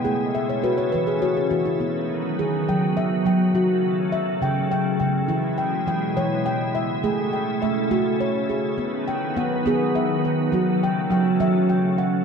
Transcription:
<<
  \new Staff \with { instrumentName = "Handpan" } { \time 6/8 \key b \mixolydian \tempo 4. = 69 << { g''8 e''16 cis''16 b'16 cis''16 b'16 gis'16 fis'16 gis'16 fis'16 e'16~ | e'16 r4 r16 g''4 g''8~ | g''8 r4 g''4 g''8~ | g''8 g''8 g''4 g''8 e''8~ |
e''8 g''8 e''4 cis''8 gis'8~ | gis'8 g''8 fis''4 e''8 b'8~ | b'8 g''8 g''4 g''8 fis''8 | } \\ { gis'4 fis'4 cis''4 | b4 gis'4 e''4 | fis'4 e''4 g''4 | e'4 r8 cis''4 r8 |
gis'4 r8 fis'4 r8 | b4 r8 gis'4 r8 | fis'4 r8 e''4 r8 | } >> }
  \new Staff \with { instrumentName = "Handpan" } { \clef bass \time 6/8 \key b \mixolydian a4. e4 e8 | r4. fis4 fis8 | fis4. cis4 cis8 | e4 e8 e4. |
a4 a8 a4. | r4 b8 b4. | fis4 fis8 fis4. | }
  \new Staff \with { instrumentName = "Ambient pad" } { \clef bass \time 6/8 \key b \mixolydian << { e'2. | fis2.~ | fis2. | e'2.~ |
e'2. | fis2.~ | fis2. | } \\ { <cis a>2. | <dis b>2. | <cis a>2. | <b, gis>2. |
<cis a>2. | <dis b>2. | <cis a>2. | } >> }
>>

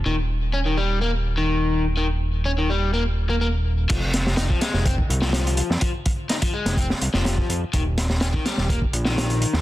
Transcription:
<<
  \new Staff \with { instrumentName = "Overdriven electric guitar" } { \clef bass \time 4/4 \key f \minor \tempo 4 = 125 ees16 r8. des'16 ees16 g8 bes16 r8 ees4 r16 | ees16 r8. des'16 ees16 g8 bes16 r8 bes16 bes16 r8. | f16 r8. ees'16 f16 aes8 c'16 r8 f4 r16 | f16 r8. ees'16 f16 aes8 c'16 r8 f4 r16 |
ees16 r8. des'16 ees16 g8 bes16 r8 ees4 r16 | }
  \new Staff \with { instrumentName = "Analog synth bass" } { \clef bass \time 4/4 \key f \minor ees,,1~ | ees,,1 | f,,4~ f,,16 r8 f,,8 r16 c,4 r16 f,16 | r4. r16 f,,8 r16 c,16 f,,8 r16 f,16 r16 |
ees,,4~ ees,,16 r8 ees,,8 r16 bes,,4 r16 ees,16 | }
  \new DrumStaff \with { instrumentName = "Drums" } \drummode { \time 4/4 r4 r4 r4 r4 | r4 r4 r4 r4 | <cymc hh bd>8 <hh sn>16 sn16 <hh sn>16 bd16 <hh sn>16 sn16 <hh bd>16 bd16 hh16 sn16 <hh sn>16 hh16 hh16 sn16 | <hh bd>8 <hh bd>8 <hh sn>16 <hh bd>8 <hh sn>16 <hh bd>16 sn16 hh16 sn16 <hh sn>16 bd16 hh8 |
<hh bd>8 <hh sn>16 sn16 <hh sn>16 bd16 <hh sn>16 sn16 <hh bd>16 bd16 hh16 sn16 <hh sn>16 hh16 hh16 sn16 | }
>>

